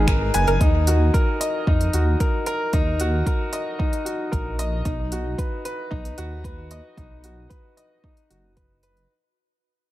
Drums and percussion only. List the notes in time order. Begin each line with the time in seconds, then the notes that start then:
0.07 finger snap, kick, closed hi-hat
0.34 closed hi-hat
0.47 closed hi-hat
0.61 kick, closed hi-hat
0.87 closed hi-hat
1.14 kick, closed hi-hat
1.41 closed hi-hat
1.67 kick
1.81 closed hi-hat
1.93 closed hi-hat
2.20 kick, closed hi-hat
2.46 closed hi-hat
2.73 kick, closed hi-hat
3.00 closed hi-hat
3.26 kick, closed hi-hat
3.53 closed hi-hat
3.80 kick
3.93 closed hi-hat
4.06 closed hi-hat
4.33 kick, closed hi-hat
4.59 closed hi-hat
4.85 kick, closed hi-hat
5.12 closed hi-hat
5.38 kick, closed hi-hat
5.65 closed hi-hat
5.91 kick
6.05 closed hi-hat
6.18 closed hi-hat
6.44 kick, closed hi-hat
6.71 closed hi-hat
6.97 kick, closed hi-hat
7.24 closed hi-hat
7.50 kick, closed hi-hat
7.77 closed hi-hat
8.04 kick
8.17 closed hi-hat
8.31 closed hi-hat
8.57 kick, closed hi-hat
8.83 closed hi-hat
8.97 closed hi-hat